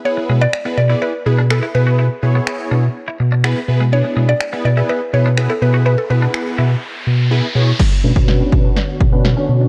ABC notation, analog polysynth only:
X:1
M:4/4
L:1/16
Q:1/4=124
K:Emix
V:1 name="Analog polysynth"
[B,EGB]3 z2 [B,EGB] z [B,EGd]2 z [B,EGB] z [B,EGB] z [B,EGB]2- | [B,EGB] z [B,EGc]4- [B,EGc] z4 z [B,EGB] z [B,EGB] z | [B,DEG]3 z2 [B,EGB] z [B,EGB]2 z [B,EGB] z [B,EGB] z [B,EGB]2- | [B,EGB] z [B,EGB]4- [B,EGB] z4 z [B,EGB] z [B,EGc] z |
z2 [CDFB] [CDFB]4- [CDFB] z3 [CDFB] z [CDFc]3 |]